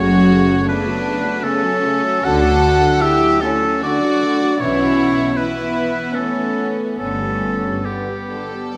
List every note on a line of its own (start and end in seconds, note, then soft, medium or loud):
0.00 0.56 F#1 medium
0.00 0.56 F#2 medium
0.00 0.11 C#3 medium
0.00 4.61 A3 medium
0.00 0.64 C#4 medium
0.00 0.64 F#4 medium
0.00 0.65 F#4 medium
0.00 0.64 C#5 loud
0.13 0.31 F#3 medium
0.31 0.50 C#3 medium
0.51 0.69 F#3 medium
0.68 0.87 C#3 medium
0.68 1.44 B3 medium
0.68 1.43 D4 medium
0.68 1.44 D4 medium
0.68 1.46 B4 medium
0.87 1.05 F#3 medium
1.06 1.24 C#3 medium
1.24 1.43 F#3 medium
1.43 1.63 C#3 medium
1.43 2.25 A3 medium
1.43 2.22 C#4 medium
1.43 2.25 C#4 medium
1.43 2.26 A4 medium
1.63 1.83 F#3 medium
1.83 2.04 C#3 medium
2.03 2.24 F#3 medium
2.24 2.88 D2 medium
2.24 2.42 D3 medium
2.24 2.88 D3 medium
2.24 3.00 F#4 loud
2.24 3.00 A4 medium
2.24 3.02 A4 medium
2.24 3.03 F#5 loud
2.43 2.63 F#3 medium
2.62 2.82 D3 medium
2.81 3.01 F#3 medium
3.01 3.21 D3 medium
3.01 3.42 E4 medium
3.01 3.42 G4 medium
3.01 3.42 E5 loud
3.21 3.42 F#3 medium
3.41 3.62 D3 medium
3.41 3.82 A3 medium
3.41 3.83 C#4 medium
3.41 3.82 A4 medium
3.62 3.83 F#3 medium
3.82 4.03 D3 medium
3.82 4.60 D4 medium
3.82 4.61 F#4 medium
3.82 4.62 D5 loud
4.02 4.22 F#3 medium
4.22 4.41 D3 medium
4.42 4.61 F#3 medium
4.60 5.24 B1 medium
4.60 5.24 B2 medium
4.60 4.78 E3 medium
4.60 8.77 B3 medium
4.60 5.36 C#4 medium
4.60 5.35 E4 medium
4.60 5.36 E4 medium
4.60 5.38 C#5 medium
4.79 4.97 E3 medium
4.98 5.16 E3 medium
5.17 5.35 E3 soft
5.36 5.55 E3 medium
5.36 6.16 B3 medium
5.36 6.14 E4 medium
5.36 6.17 B4 medium
5.56 5.74 E3 soft
5.75 5.93 E3 medium
5.94 6.14 E3 soft
6.14 6.35 E3 medium
6.14 6.99 A3 medium
6.14 6.98 C#4 medium
6.14 6.70 A4 medium
6.36 6.56 E3 soft
6.57 6.78 E3 soft
6.79 7.00 E3 soft
6.99 7.71 G1 medium
6.99 7.72 G2 medium
6.99 7.20 D3 soft
6.99 7.84 A3 medium
6.99 7.84 C#4 medium
6.99 7.87 A4 medium
7.22 7.43 G3 soft
7.43 7.64 D3 soft
7.65 7.86 G3 soft
7.85 8.08 D3 soft
7.85 8.76 G3 soft
7.85 8.76 B3 soft
7.85 8.30 B3 soft
7.85 8.76 G4 medium
8.08 8.31 G3 soft
8.31 8.54 D3 soft
8.31 8.73 A4 medium
8.53 8.76 G3 soft